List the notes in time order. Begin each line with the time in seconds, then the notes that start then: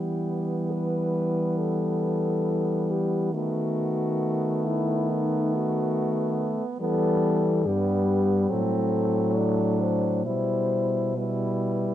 Already playing: E3 G3 B3 G4
0.72 B4
1.58 A4
2.91 G4
3.33 D#3 A3 B3 F#4
4.66 E4
5.10 D#4
5.54 F#4
6.80 E3 G3 B3 A4
7.65 G2 G3 B3 G4
8.50 A2 F#3 C4 A4
9.36 D4
9.81 C5
10.25 B2 G3 E4 C5
11.17 G3 E4 B4